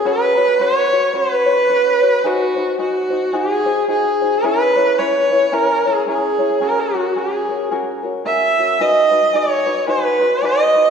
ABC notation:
X:1
M:4/4
L:1/16
Q:"Swing" 1/4=110
K:B
V:1 name="Viola"
B4 c4 B8 | F4 F4 G4 G4 | B4 c4 A2 G2 G4 | A F3 G4 z4 e4 |
d4 c4 B4 d4 |]
V:2 name="Ukulele"
[CFBc]2 [CFc]2 [CFBc]2 [CFc]2 [CFBc]2 [CFc]2 [CFBc]2 [CFc]2 | [DFG^B]2 [DFB]2 [DFGB]2 [DFB]2 [DFGB]2 [DFB]2 [DFGB]2 [DFB]2 | [CEGc]2 [CEc]2 [CEGc]2 [CEc]2 [CEGc]2 [CEc]2 [CEGc]2 [CEc]2 | [CFGA]2 [CFA]2 [CFGA]2 [CFA]2 [CFGA]2 [CFA]2 [CFGA]2 [CFA]2 |
[DFGB]2 [DFB]2 [DFGB]2 [DFB]2 [DFGB]2 [DFB]2 [DFGB]2 [DFB]2 |]